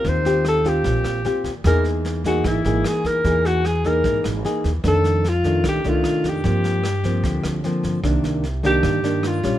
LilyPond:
<<
  \new Staff \with { instrumentName = "Alto saxophone" } { \time 4/4 \key g \minor \tempo 4 = 150 c''4 a'8 g'2 r8 | ais'8 r4 fis'8 e'4 gis'8 ais'8~ | ais'8 fis'8 gis'8 ais'4 r4. | a'4 f'4 g'8 f'4 g'8~ |
g'2. r4 | \key c \minor r4. g'4. f'4 | }
  \new Staff \with { instrumentName = "Nylon-string guitar" } { \time 4/4 \key g \minor << { <c' f' g'>8 <c' f' g'>4 <c' f' g'>4. <c' f' g'>8 r8 | <ais dis' gis'>4. <ais dis' gis'>4 <ais dis' gis'>4. | <ais dis' gis'>4 r8 <ais dis' gis'>4. <ais dis' gis'>8 r8 | <ees a d'>4 r8 <ees a d'>4 <ees a d'>4. |
<f bes c'>4 r8 <f bes c'>4. <f bes c'>4 | \key c \minor <ees bes d'>4 r8 <ees bes d'>4 <ees bes d'>4 <g des'>8 | } \\ { ees2 bes,2 | e2 e2 | e2 e2 | f,2 c2 |
g,2 d2 | c2 g,2 | } >> }
  \new Staff \with { instrumentName = "Upright bass" } { \clef bass \time 4/4 \key g \minor ees,2 bes,,8 bes,,8 r8 ees,8 | e,2 gis,,8 gis,,8 r8 e,8 | e,2 gis,,8 gis,,8 r8 dis,8 | f,2 c,8 c,8 r8 f,8 |
g,2 d,8 d,8 r8 g,8 | \key c \minor c,8 c,4. g,4. bes,,8 | }
  \new DrumStaff \with { instrumentName = "Drums" } \drummode { \time 4/4 <bd sn>8 sn8 <ss sn>8 <bd sn>8 <bd sn>8 <ss sn>8 sn8 <bd sn>8 | <bd ss sn>8 sn8 sn8 <bd sn>8 <bd ss sn>8 sn8 <ss sn>8 <bd sn>8 | <bd sn>8 sn8 <ss sn>8 <bd sn>8 <bd sn>8 <ss sn>8 sn8 <bd sn>8 | <bd ss sn>8 sn8 sn8 <bd sn>8 <bd ss sn>8 sn8 <ss sn>8 <bd sn>8 |
<bd sn>8 sn8 <ss sn>8 <bd sn>8 <bd sn>8 <ss sn>8 sn8 <bd sn>8 | <bd ss sn>8 sn8 sn8 <bd sn>8 <bd ss sn>8 sn8 <ss sn>8 <bd sn>8 | }
>>